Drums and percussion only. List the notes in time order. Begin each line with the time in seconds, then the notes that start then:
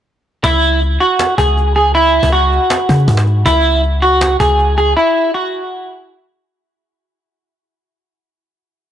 0.44 cajon bass
0.82 cajon slap
1.01 cajon slap
1.19 cajon slap
1.38 cajon bass
1.48 cajon slap
1.57 cajon slap
1.75 cajon slap
1.95 cajon slap
2.23 cajon bass
2.33 cajon slap
2.52 cajon slap
2.70 cajon slap
2.89 cajon bass
2.98 cajon slap
3.08 cajon bass, cajon slap
3.17 cajon slap
3.26 cajon slap
3.46 cajon bass
3.84 cajon slap
4.03 cajon slap
4.21 cajon slap
4.40 cajon bass
4.49 cajon slap
4.59 cajon slap
4.77 cajon slap